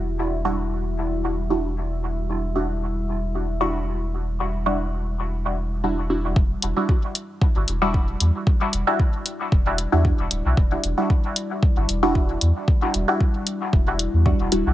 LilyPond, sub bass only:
\new Staff \with { instrumentName = "Sub bass" } { \clef bass \time 4/4 \key e \minor \tempo 4 = 114 e,,1~ | e,,1~ | e,,1 | e,,16 r16 e,,16 r4. g,,16 e,,4 e,16 r16 |
r8 e,,16 r4 r16 e,,8. e,16 r16 e,,16 d,,16 b,,16 | e,,16 r16 e,,16 r4. g,,16 e,,4 e,16 r16 | r8 e,,16 r4 r16 e,,8. e,16 r16 e,,16 d,,16 b,,16 | }